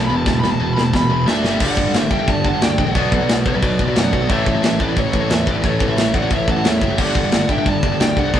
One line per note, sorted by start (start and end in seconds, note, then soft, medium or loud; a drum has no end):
0.00 0.24 E2 medium
0.00 0.25 B2 medium
0.00 0.27 E3 medium
0.05 0.16 B5 medium
0.10 0.26 E1 loud
0.10 0.25 E2 medium
0.10 0.25 B2 medium
0.16 0.27 A5 loud
0.26 0.42 E1 medium
0.26 0.42 E2 medium
0.26 0.42 B2 loud
0.26 1.09 E3 loud
0.26 0.38 A5 loud
0.26 kick loud
0.26 snare medium
0.40 0.59 E1 medium
0.40 0.59 E2 medium
0.40 0.59 B2 medium
0.40 0.50 B5 loud
0.40 snare medium
0.50 0.60 A5 medium
0.60 0.75 E1 medium
0.60 0.75 E2 medium
0.60 0.75 B2 medium
0.60 0.73 A5 loud
0.73 0.92 E1 medium
0.73 0.92 E2 medium
0.73 0.83 B5 medium
0.77 0.92 B2 medium
0.77 snare medium
0.84 0.94 A5 loud
0.93 1.09 E1 medium
0.93 1.09 E2 medium
0.93 1.09 B2 medium
0.93 1.27 B5 loud
0.93 kick loud
0.93 snare medium
1.09 1.25 E1 loud
1.09 1.25 E2 medium
1.09 1.25 B2 medium
1.09 1.26 E3 loud
1.25 1.42 D2 medium
1.25 1.43 D3 loud
1.25 1.43 A3 loud
1.25 1.43 D4 loud
1.25 1.59 A4 medium
1.25 1.60 E5 loud
1.25 snare loud
1.43 1.60 G1 loud
1.43 1.59 G2 loud
1.43 1.60 D3 loud
1.43 1.60 G3 loud
1.43 snare loud
1.60 1.76 G1 medium
1.60 1.76 G2 loud
1.60 1.76 D3 loud
1.60 1.77 G3 loud
1.60 2.08 D5 medium
1.60 2.11 F#5 loud
1.60 kick loud
1.60 crash loud
1.60 china medium
1.77 1.93 G1 medium
1.77 1.85 G2 medium
1.77 1.85 D3 medium
1.77 kick loud
1.86 1.93 G2 medium
1.86 1.93 D3 medium
1.93 2.10 G1 medium
1.93 2.09 G2 medium
1.93 2.10 D3 medium
1.93 snare loud
1.93 china medium
2.11 2.27 G1 medium
2.11 2.19 G2 medium
2.11 2.18 D3 loud
2.11 2.30 E5 medium
2.11 2.28 G5 medium
2.11 kick medium
2.19 2.26 G2 medium
2.19 2.27 D3 medium
2.28 2.44 G1 loud
2.28 2.43 G2 medium
2.28 2.43 D3 loud
2.28 2.46 D5 medium
2.28 2.44 A5 loud
2.28 kick loud
2.28 china medium
2.44 2.61 G1 medium
2.44 2.52 G2 medium
2.44 2.52 D3 medium
2.44 2.61 F#5 loud
2.44 2.62 A5 loud
2.44 kick medium
2.54 2.60 G2 medium
2.54 2.61 D3 medium
2.61 2.78 D2 medium
2.61 2.77 G2 medium
2.61 2.77 D3 medium
2.61 2.78 D5 medium
2.61 2.80 G5 medium
2.61 snare loud
2.61 china medium
2.78 2.94 A#1 medium
2.78 2.86 G2 medium
2.78 2.86 D3 loud
2.78 3.29 D5 loud
2.78 3.30 F#5 loud
2.78 kick loud
2.87 2.95 G2 medium
2.87 2.95 D3 medium
2.95 3.11 B1 medium
2.95 3.11 B2 loud
2.95 3.11 F#3 loud
2.95 3.12 B3 loud
2.95 kick loud
2.95 china medium
3.12 3.28 B1 loud
3.12 3.21 B2 medium
3.12 3.20 F#3 medium
3.12 kick loud
3.21 3.28 B2 medium
3.21 3.28 F#3 medium
3.29 3.45 B1 loud
3.29 3.44 B2 loud
3.29 3.44 F#3 medium
3.29 snare loud
3.29 china medium
3.46 3.62 B1 medium
3.46 3.53 B2 medium
3.46 3.53 F#3 medium
3.46 3.93 B4 medium
3.46 3.98 D5 loud
3.46 kick loud
3.54 3.61 B2 medium
3.54 3.62 F#3 medium
3.63 3.79 B1 medium
3.63 3.78 B2 medium
3.63 3.78 F#3 loud
3.63 kick loud
3.63 china medium
3.79 3.96 B1 loud
3.79 3.87 B2 medium
3.79 3.87 F#3 medium
3.79 kick loud
3.88 3.95 B2 medium
3.88 3.95 F#3 loud
3.96 4.12 F#2 medium
3.96 4.11 B2 medium
3.96 4.11 F#3 loud
3.96 4.28 D5 medium
3.96 4.31 F#5 loud
3.96 snare loud
3.96 china medium
4.13 4.29 B1 loud
4.13 4.20 B2 medium
4.13 4.20 F#3 medium
4.13 kick medium
4.21 4.28 B2 medium
4.21 4.29 F#3 medium
4.28 4.46 A1 loud
4.28 4.45 A2 loud
4.28 4.44 E3 loud
4.28 4.45 A3 loud
4.28 4.77 C#5 medium
4.28 4.80 E5 loud
4.28 kick loud
4.28 china medium
4.46 4.63 A1 loud
4.46 4.54 A2 medium
4.46 4.54 E3 medium
4.46 kick loud
4.55 4.61 A2 medium
4.55 4.62 E3 medium
4.63 4.79 A1 medium
4.63 4.78 A2 medium
4.63 4.78 E3 medium
4.63 snare loud
4.63 china medium
4.79 4.96 A1 medium
4.79 4.87 A2 medium
4.79 4.86 E3 loud
4.79 4.96 B4 medium
4.79 4.99 D5 medium
4.79 kick medium
4.88 4.95 A2 medium
4.88 4.95 E3 medium
4.96 5.13 A1 loud
4.96 5.12 A2 medium
4.96 5.11 E3 loud
4.96 5.30 A4 medium
4.96 5.31 C#5 loud
4.96 kick loud
4.96 china medium
5.12 5.30 A1 loud
5.12 5.20 A2 medium
5.12 5.19 E3 medium
5.12 kick medium
5.21 5.28 A2 medium
5.21 5.28 E3 medium
5.29 5.46 E2 medium
5.29 5.45 A2 medium
5.29 5.45 E3 loud
5.29 5.46 C#5 medium
5.29 5.48 E5 loud
5.29 snare loud
5.29 china medium
5.46 5.63 A1 loud
5.46 5.53 A2 medium
5.46 5.53 E3 medium
5.46 5.63 B4 medium
5.46 5.65 D5 loud
5.46 kick medium
5.54 5.61 A2 medium
5.54 5.62 E3 medium
5.62 5.80 A1 medium
5.62 5.78 A2 loud
5.62 5.78 E3 loud
5.62 5.88 A4 medium
5.62 5.88 C#5 medium
5.62 kick loud
5.62 china medium
5.66 6.99 A3 loud
5.79 5.96 A1 loud
5.79 5.87 A2 medium
5.79 5.87 E3 medium
5.79 kick loud
5.88 5.95 A2 medium
5.88 5.96 E3 medium
5.88 6.13 C#5 medium
5.88 6.15 E5 medium
5.96 6.14 A1 loud
5.96 6.12 A2 medium
5.96 6.13 E3 medium
5.96 snare loud
5.96 china medium
6.14 6.30 A1 medium
6.14 6.21 A2 medium
6.14 6.21 E3 medium
6.14 6.30 D5 medium
6.14 6.32 F#5 medium
6.14 kick loud
6.22 6.30 A2 medium
6.22 6.30 E3 medium
6.30 6.47 A1 loud
6.30 6.46 A2 medium
6.30 6.47 E3 medium
6.30 6.47 C#5 medium
6.30 6.49 E5 medium
6.30 kick loud
6.30 china medium
6.48 6.64 A1 medium
6.48 6.56 A2 medium
6.48 6.55 E3 medium
6.48 6.64 F#5 medium
6.48 6.66 A5 medium
6.48 kick medium
6.57 6.64 A2 medium
6.57 6.64 E3 medium
6.64 6.81 E2 medium
6.64 6.80 A2 medium
6.64 6.80 E3 medium
6.64 6.96 C#5 medium
6.64 7.00 E5 medium
6.64 snare loud
6.64 china medium
6.82 6.98 F#1 loud
6.82 6.90 A2 medium
6.82 6.89 E3 medium
6.82 kick medium
6.91 6.99 A2 medium
6.91 6.99 E3 medium
6.98 7.15 G1 loud
6.98 7.15 G2 loud
6.98 7.15 D3 loud
6.98 7.15 G3 loud
6.98 7.46 D5 medium
6.98 7.50 F#5 loud
6.98 kick loud
6.98 crash loud
6.98 china medium
7.15 7.32 G1 medium
7.15 7.23 G2 medium
7.15 7.23 D3 medium
7.15 kick loud
7.24 7.31 G2 medium
7.24 7.32 D3 medium
7.32 7.48 G1 medium
7.32 7.48 G2 medium
7.32 7.48 D3 medium
7.32 snare loud
7.32 china medium
7.49 7.65 G1 medium
7.49 7.57 G2 medium
7.49 7.57 D3 loud
7.49 7.66 E5 medium
7.49 7.68 G5 medium
7.49 kick medium
7.58 7.66 G2 medium
7.58 7.66 D3 medium
7.66 7.82 G1 medium
7.66 7.82 G2 medium
7.66 7.82 D3 medium
7.66 8.00 D5 medium
7.66 8.01 A5 medium
7.66 kick loud
7.66 china medium
7.83 7.99 G1 medium
7.83 7.92 G2 medium
7.83 7.91 D3 medium
7.83 kick loud
7.92 7.99 G2 medium
7.92 7.99 D3 medium
8.00 8.16 D2 loud
8.00 8.15 G2 medium
8.00 8.15 D3 medium
8.00 8.15 D5 medium
8.00 8.18 G5 medium
8.00 snare loud
8.00 china medium
8.16 8.33 C2 medium
8.16 8.25 G2 medium
8.16 8.24 D3 medium
8.16 8.40 D5 medium
8.16 8.40 F#5 loud
8.16 kick loud
8.25 8.34 G2 medium
8.25 8.33 D3 medium
8.34 8.40 B1 loud
8.34 8.40 B2 loud
8.34 8.40 F#3 loud
8.34 8.40 B3 loud
8.34 kick loud
8.34 china medium